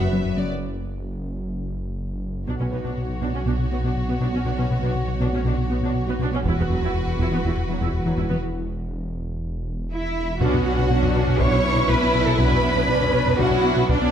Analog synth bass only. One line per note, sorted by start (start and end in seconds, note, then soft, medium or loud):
0.01 0.08 F#2 medium
0.13 0.20 F#3 medium
0.25 0.33 F#2 soft
0.38 0.45 F#3 medium
2.48 2.55 B2 medium
2.60 2.68 B2 soft
2.73 2.80 B2 medium
2.85 2.92 B2 medium
2.97 3.05 B2 soft
3.09 3.17 B2 soft
3.21 3.29 B2 medium
3.33 3.41 B3 soft
3.45 3.53 B2 medium
3.59 3.66 B2 medium
3.72 3.79 B3 soft
3.84 3.91 B2 medium
3.96 4.04 B2 soft
4.09 4.16 B3 soft
4.20 4.28 B2 medium
4.33 4.41 B3 medium
4.45 4.53 B2 medium
4.59 4.66 B2 soft
4.71 4.78 B2 medium
4.83 4.90 B2 medium
4.95 5.03 B2 soft
5.08 5.16 B2 medium
5.21 5.28 B2 medium
5.33 5.40 B3 medium
5.45 5.52 B2 medium
5.58 5.65 B2 medium
5.70 5.77 B3 medium
5.82 5.90 B2 medium
5.95 6.02 B2 medium
6.07 6.14 B3 soft
6.19 6.27 B2 medium
6.31 6.39 B3 medium
6.44 6.52 E2 medium
6.57 6.65 E2 medium
6.69 6.76 E2 medium
6.81 6.89 E2 medium
6.94 7.02 E2 soft
7.07 7.14 E2 medium
7.19 7.27 E2 medium
7.32 7.39 E3 medium
7.44 7.51 E2 medium
7.57 7.64 E2 medium
7.69 7.77 E3 soft
7.81 7.88 E2 medium
7.93 8.00 E2 medium
8.06 8.13 E3 medium
8.17 8.25 E2 medium
8.30 8.38 E3 medium
10.41 10.49 B2 medium
10.54 10.61 B2 medium
10.66 10.73 B3 medium
10.78 10.86 B2 medium
10.90 10.98 B2 medium
11.03 11.10 B2 medium
11.16 11.24 B2 medium
11.28 11.35 B2 medium
11.40 11.48 B2 medium
11.52 11.60 B2 medium
11.64 11.72 B3 medium
11.76 11.84 B2 medium
11.88 11.96 B2 medium
12.02 12.10 B3 medium
12.15 12.22 B2 medium
12.27 12.35 B2 medium
12.39 12.47 B2 medium
12.51 12.59 B2 medium
12.63 12.71 B3 medium
12.76 12.84 B2 medium
12.88 12.96 B2 medium
13.01 13.09 B2 medium
13.14 13.21 B2 medium
13.26 13.34 B2 medium
13.39 13.47 B2 loud
13.51 13.59 B2 medium
13.64 13.71 B3 medium
13.76 13.84 B2 medium
13.89 13.97 B2 medium
14.02 14.09 B3 medium